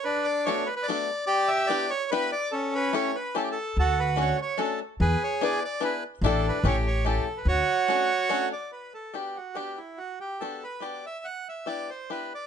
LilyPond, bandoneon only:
\new Staff \with { instrumentName = "Bandoneon" } { \time 3/4 \key d \major \tempo 4 = 145 << { b'8 d''8 cis''8 b'16 b'16 d''4 | d''8 e''8 d''8 cis''8 b'8 d''8 | a'8 b'8 cis''8 b'8 \tuplet 3/2 { a'16 g'16 a'4 } | a'8 b'8 cis''8 cis''8 a'8 r8 |
b'8 cis''8 d''8 d''8 b'8 r8 | a'8 b'8 cis''8 cis''8 a'8. b'16 | cis''2~ cis''8 d''8 | \key g \major b'8 a'8 g'8 fis'8 g'8 e'8 |
fis'8 g'8 a'8 b'8 d''8 e''8 | fis''8 e''8 d''8 c''8 b'8 d''8 | } \\ { d'4. r4. | g'4. r4. | cis'4. r4. | fis'4. r4. |
gis'4. r4. | d'4 g'4. r8 | fis'2~ fis'8 r8 | r2. |
r2. | r2. | } >> }